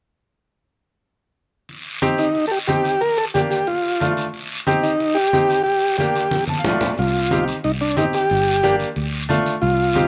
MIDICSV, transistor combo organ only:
0, 0, Header, 1, 2, 480
1, 0, Start_track
1, 0, Tempo, 330761
1, 2454, Time_signature, 4, 2, 24, 8
1, 14625, End_track
2, 0, Start_track
2, 0, Title_t, "Transistor combo organ"
2, 0, Program_c, 0, 18
2, 3174, Note_on_c, 0, 63, 71
2, 3565, Note_off_c, 0, 63, 0
2, 3591, Note_on_c, 0, 69, 56
2, 3645, Note_on_c, 0, 67, 76
2, 3652, Note_off_c, 0, 69, 0
2, 3755, Note_off_c, 0, 67, 0
2, 3881, Note_on_c, 0, 67, 83
2, 4368, Note_on_c, 0, 70, 93
2, 4382, Note_off_c, 0, 67, 0
2, 4611, Note_on_c, 0, 69, 83
2, 4619, Note_off_c, 0, 70, 0
2, 4720, Note_off_c, 0, 69, 0
2, 4849, Note_on_c, 0, 67, 74
2, 4958, Note_off_c, 0, 67, 0
2, 5087, Note_on_c, 0, 67, 77
2, 5333, Note_on_c, 0, 65, 75
2, 5338, Note_off_c, 0, 67, 0
2, 6003, Note_off_c, 0, 65, 0
2, 7009, Note_on_c, 0, 63, 76
2, 7469, Note_on_c, 0, 67, 93
2, 7506, Note_off_c, 0, 63, 0
2, 8161, Note_off_c, 0, 67, 0
2, 8178, Note_on_c, 0, 67, 95
2, 8660, Note_off_c, 0, 67, 0
2, 8677, Note_on_c, 0, 67, 72
2, 9354, Note_off_c, 0, 67, 0
2, 10139, Note_on_c, 0, 65, 74
2, 10805, Note_off_c, 0, 65, 0
2, 11093, Note_on_c, 0, 63, 84
2, 11200, Note_off_c, 0, 63, 0
2, 11335, Note_on_c, 0, 62, 76
2, 11557, Note_off_c, 0, 62, 0
2, 11577, Note_on_c, 0, 63, 73
2, 11684, Note_off_c, 0, 63, 0
2, 11818, Note_on_c, 0, 67, 97
2, 12717, Note_off_c, 0, 67, 0
2, 13954, Note_on_c, 0, 65, 95
2, 14625, Note_off_c, 0, 65, 0
2, 14625, End_track
0, 0, End_of_file